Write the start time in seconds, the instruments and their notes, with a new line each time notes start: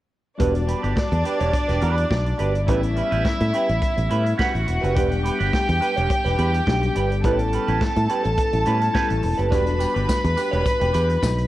0.38 fingered electric bass E1, tine electric piano G3 B3 D4 F#4, clean electric guitar D4 G4 B4, violin section D4 D5, kick, closed hi-hat
0.54 muted clean electric guitar stroke, closed hi-hat
0.67 clean electric guitar D4 G4 B4, closed hi-hat
0.82 fingered electric bass G1, clean electric guitar D4 G4 B4, closed hi-hat
0.96 muted clean electric guitar stroke, muted fingered electric bass stroke, kick, snare
1.11 fingered electric bass E2, muted clean electric guitar stroke, closed hi-hat
1.24 clean electric guitar D4 G4 B4, closed hi-hat
1.40 fingered electric bass E1, clean electric guitar D4 G4 C#5, closed hi-hat
1.53 muted clean electric guitar stroke, kick, closed hi-hat
1.68 fingered electric bass E1, clean electric guitar D4 G4 B4, snare, closed hi-hat
1.81 fingered electric bass E2, clean electric guitar D4 G4 B4, closed hi-hat
1.97 muted clean electric guitar stroke, closed hi-hat
2.10 fingered electric bass B1, muted clean electric guitar stroke, kick, snare
2.25 muted clean electric guitar stroke, closed hi-hat
2.38 fingered electric bass G1, clean electric guitar D4 G4 B4, closed hi-hat
2.54 muted clean electric guitar stroke, closed hi-hat
2.67 fingered electric bass A1, tine electric piano G3 B3 C#4 E4, clean electric guitar C#4 G4 B4, violin section E4 E5, kick, closed hi-hat
2.82 muted clean electric guitar stroke, closed hi-hat
2.96 clean electric guitar C#4 G4 B4, closed hi-hat
3.11 fingered electric bass A1, clean electric guitar C#4 G4 B4, closed hi-hat
3.25 muted clean electric guitar stroke, kick, snare
3.40 fingered electric bass A2, muted clean electric guitar stroke, closed hi-hat
3.53 clean electric guitar C#4 G4 B4, closed hi-hat
3.69 fingered electric bass A1, muted clean electric guitar stroke, closed hi-hat
3.82 muted clean electric guitar stroke, kick, closed hi-hat
3.96 fingered electric bass A1, muted clean electric guitar stroke, closed hi-hat
4.09 fingered electric bass A2, clean electric guitar C#4 G4 B4, closed hi-hat
4.25 muted clean electric guitar stroke, closed hi-hat
4.38 clean electric guitar C#4 G4 B4, violin section F#4 F#5, kick, snare
4.53 fingered electric bass A1, muted clean electric guitar stroke, closed hi-hat
4.66 fingered electric bass E1, muted clean electric guitar stroke, closed hi-hat
4.81 fingered electric bass F#1, clean electric guitar C#4 G4 B4, closed hi-hat
4.95 fingered electric bass E1, tine electric piano G3 B3 D4 G4, clean electric guitar D4 G4 B4, violin section G4 G5, kick, closed hi-hat
5.10 muted clean electric guitar stroke, closed hi-hat
5.23 clean electric guitar D4 G4 B4, closed hi-hat
5.39 fingered electric bass G1, clean electric guitar D4 G4 B4, closed hi-hat
5.52 muted clean electric guitar stroke, kick, snare
5.68 fingered electric bass E2, muted clean electric guitar stroke, closed hi-hat
5.81 clean electric guitar D4 G4 B4, closed hi-hat
5.96 fingered electric bass E1, clean electric guitar D4 G4 C#5, closed hi-hat
6.10 muted clean electric guitar stroke, kick, closed hi-hat
6.25 fingered electric bass E1, clean electric guitar D4 G4 B4, snare, closed hi-hat
6.38 fingered electric bass E2, clean electric guitar D4 G4 B4, closed hi-hat
6.54 muted clean electric guitar stroke, closed hi-hat
6.67 fingered electric bass B1, tine electric piano G3 B3 D4 G4, muted clean electric guitar stroke, kick, snare
6.82 muted clean electric guitar stroke, closed hi-hat
6.95 fingered electric bass G1, clean electric guitar D4 G4 B4, closed hi-hat
7.11 muted clean electric guitar stroke, closed hi-hat
7.23 fingered electric bass A1, tine electric piano G3 B3 C#4 E4, clean electric guitar C#4 G4 B4, violin section A4 A5, kick, closed hi-hat
7.39 muted clean electric guitar stroke, closed hi-hat
7.53 clean electric guitar C#4 G4 B4, closed hi-hat
7.67 fingered electric bass A1, clean electric guitar C#4 G4 B4, closed hi-hat
7.81 muted fingered electric bass stroke, muted clean electric guitar stroke, kick, snare
7.96 fingered electric bass A2, muted clean electric guitar stroke, closed hi-hat
8.09 clean electric guitar C#4 G4 B4, closed hi-hat
8.24 fingered electric bass A1, muted clean electric guitar stroke, closed hi-hat
8.37 muted clean electric guitar stroke, kick, closed hi-hat
8.53 fingered electric bass A1, muted clean electric guitar stroke, closed hi-hat
8.65 fingered electric bass A2, tine electric piano G3 B3 C#4 E4, clean electric guitar C#4 G4 B4, closed hi-hat
8.81 muted clean electric guitar stroke, closed hi-hat
8.94 clean electric guitar C#4 G4 B4, kick, snare
9.09 fingered electric bass A1, muted clean electric guitar stroke, closed hi-hat
9.23 fingered electric bass E1, muted clean electric guitar stroke, open hi-hat
9.38 fingered electric bass F#1, clean electric guitar C#4 G4 B4, closed hi-hat
9.51 fingered electric bass E1, tine electric piano F#3 B3 D4 F#4, clean electric guitar D4 G4 B4, violin section B4 B5, kick, closed hi-hat, tambourine
9.57 tine electric piano G3
9.66 muted clean electric guitar stroke, closed hi-hat
9.79 clean electric guitar D4 G4 B4, closed hi-hat, tambourine
9.94 fingered electric bass G1, clean electric guitar D4 G4 B4, closed hi-hat
10.08 muted clean electric guitar stroke, kick, snare, tambourine
10.24 fingered electric bass E2, muted clean electric guitar stroke, closed hi-hat
10.37 clean electric guitar D4 G4 B4, closed hi-hat, tambourine
10.51 fingered electric bass E1, clean electric guitar D4 G4 C#5, closed hi-hat
10.65 muted clean electric guitar stroke, kick, closed hi-hat, tambourine
10.80 fingered electric bass E1, clean electric guitar D4 G4 B4, closed hi-hat
10.93 fingered electric bass E2, clean electric guitar D4 G4 B4, closed hi-hat, tambourine
11.09 muted clean electric guitar stroke, closed hi-hat
11.22 fingered electric bass B1, muted clean electric guitar stroke, kick, snare, tambourine
11.37 muted clean electric guitar stroke, closed hi-hat